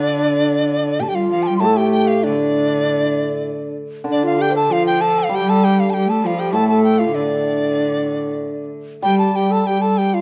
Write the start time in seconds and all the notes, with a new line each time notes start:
Already playing: D3 D4 D5
0.99 G3 G4 G5 A5
1.06 G4 G5
1.15 F4 F5
1.31 F3 F5
1.43 G5 A5
1.48 G3
1.57 A2 A4 A5 C6
1.63 A3
1.73 G4 G5 A5
1.92 G5
2.07 F5
2.24 D3 D4 D5
4.04 D3 D4
4.12 D5
4.23 F4 F5
4.39 G4 G5
4.51 C5
4.56 A4 A5
4.69 F3 F4 F5
4.87 G5
5.01 A4 A5
5.19 F5
5.29 G3 G4
5.35 G5
5.49 A4 A5
5.64 G4 G5
5.80 F5
5.90 G3 G5 A5
5.96 G4
6.06 A3 A5
6.11 A4
6.24 F3 F4 F5
6.36 A4 G5
6.41 G4
6.53 A2 A3 A4 A5
6.68 A4 A5
6.84 G5
6.99 F4 F5
7.14 D3 D4 D5
9.02 G3 G4 G5
9.19 A5
9.34 G3 G4 G5
9.51 A4 A5
9.64 G5 A5
9.68 G3 G4
9.81 A4 A5
9.97 G4 G5
10.14 F4 F5